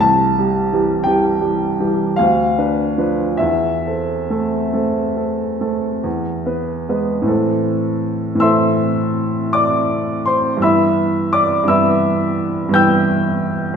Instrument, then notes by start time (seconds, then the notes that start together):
upright piano
0.00 C2 A5
0.38 G3 G4
0.73 E3 G3 G4
1.04 E3 G3 G4 G5
1.41 G3 G4
1.80 E3 G3 G4
2.16 D2 F5
2.58 D4 B4
2.98 F3 D4 B4
3.37 E2 E5
3.86 C4 A4
4.30 A3 C4 A4
4.73 A3 C4 A4
5.16 C4 A4
5.61 A3 C4 A4
6.04 E2
6.46 B3 B4
6.89 G#3 B3 B4
7.22 A2 E3 C4
7.28 A4
8.35 A2 E3
8.39 C4 A4 E5 C6 E6
9.53 D5 D6
10.26 C5 C6
10.57 G2 E3 B3
10.62 E4 E5 B5 E6
11.33 D5 D6
11.64 G2 E3 B3
11.68 E4 E5 B5 E6
12.69 G2 E3 B3
12.74 E4 G5 E6 G6